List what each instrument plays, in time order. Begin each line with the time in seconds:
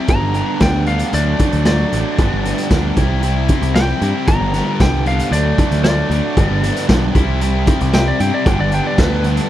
0.08 picked electric bass G1, overdriven electric guitar G2 D3 G3 B3 D4, lead electric guitar A#5, kick, closed hi-hat
0.22 picked electric bass G1
0.34 overdriven electric guitar G2 D3 G3 B3 D4, closed hi-hat
0.60 picked electric bass D2, overdriven electric guitar G2 D3 G3 B3 D4, lead electric guitar G5, kick, snare, closed hi-hat
0.86 overdriven electric guitar G2 D3 G3 B3 D4, lead electric guitar F5, closed hi-hat
0.99 closed hi-hat
1.13 picked electric bass D2, overdriven electric guitar D3 F#3 A3 D4, lead electric guitar D5, closed hi-hat
1.39 overdriven electric guitar D3 F#3 A3 D4, kick, closed hi-hat
1.52 picked electric bass D2, closed hi-hat
1.65 overdriven electric guitar D3 F#3 A3 D4, lead electric guitar D5, snare, closed hi-hat
1.92 picked electric bass A1, overdriven electric guitar D3 F#3 A3 D4, closed hi-hat
2.19 picked electric bass G1, overdriven electric guitar G2 D3 G3 B3 D4, kick, closed hi-hat
2.32 picked electric bass G1
2.45 overdriven electric guitar G2 D3 G3 B3 D4, snare, closed hi-hat
2.58 closed hi-hat
2.71 picked electric bass D2, overdriven electric guitar G2 D3 G3 B3 D4, kick, snare, closed hi-hat
2.97 picked electric bass C2, overdriven electric guitar C3 G3 C4 E4, kick, closed hi-hat
3.23 overdriven electric guitar C3 G3 C4 E4, closed hi-hat
3.49 overdriven electric guitar C3 G3 C4 E4, kick, closed hi-hat
3.62 picked electric bass C2, closed hi-hat
3.75 overdriven electric guitar C3 G3 C4 E4, lead electric guitar G5, snare, closed hi-hat
4.01 picked electric bass G2, overdriven electric guitar C3 G3 C4 E4, closed hi-hat
4.27 picked electric bass G1, overdriven electric guitar G2 D3 G3 B3 D4, lead electric guitar A#5, kick, closed hi-hat
4.40 picked electric bass G1
4.53 overdriven electric guitar G2 D3 G3 B3 D4, snare, closed hi-hat
4.80 picked electric bass C2, overdriven electric guitar G2 D3 G3 B3 D4, lead electric guitar G5, kick, snare, closed hi-hat
5.05 overdriven electric guitar G2 D3 G3 B3 D4, lead electric guitar F5, closed hi-hat
5.19 closed hi-hat
5.31 picked electric bass D2, overdriven electric guitar D3 F#3 A3 D4, lead electric guitar D5, closed hi-hat
5.58 overdriven electric guitar D3 F#3 A3 D4, kick, closed hi-hat
5.71 picked electric bass D2, closed hi-hat
5.84 overdriven electric guitar D3 F#3 A3 D4, lead electric guitar D5, snare, closed hi-hat
6.10 picked electric bass D2, overdriven electric guitar D3 F#3 A3 D4, closed hi-hat
6.36 picked electric bass G1, overdriven electric guitar G2 D3 G3 B3 D4, kick, closed hi-hat
6.50 picked electric bass G1
6.63 overdriven electric guitar G2 D3 G3 B3 D4, snare, closed hi-hat
6.76 closed hi-hat
6.88 picked electric bass B1, overdriven electric guitar G2 D3 G3 B3 D4, kick, snare, closed hi-hat
7.14 picked electric bass C2, overdriven electric guitar C3 G3 C4 E4, kick, closed hi-hat
7.41 overdriven electric guitar C3 G3 C4 E4, closed hi-hat
7.67 overdriven electric guitar C3 G3 C4 E4, kick, closed hi-hat
7.81 picked electric bass C2, closed hi-hat
7.93 overdriven electric guitar C3 G3 C4 E4, lead electric guitar G5, snare, closed hi-hat
8.08 lead electric guitar D5
8.20 picked electric bass G2, overdriven electric guitar C3 G3 C4 E4, lead electric guitar G5, closed hi-hat
8.34 lead electric guitar D5
8.45 picked electric bass G1, overdriven electric guitar G2 D3 G3 B3 D4, lead electric guitar G5, kick, closed hi-hat
8.60 picked electric bass G1, lead electric guitar D5
8.71 overdriven electric guitar G2 D3 G3 B3 D4, lead electric guitar G5, closed hi-hat
8.87 lead electric guitar D5
8.98 picked electric bass D2, overdriven electric guitar G2 D3 G3 B3 D4, lead electric guitar B4, kick, snare, closed hi-hat
9.24 overdriven electric guitar G2 D3 G3 B3 D4, closed hi-hat
9.37 closed hi-hat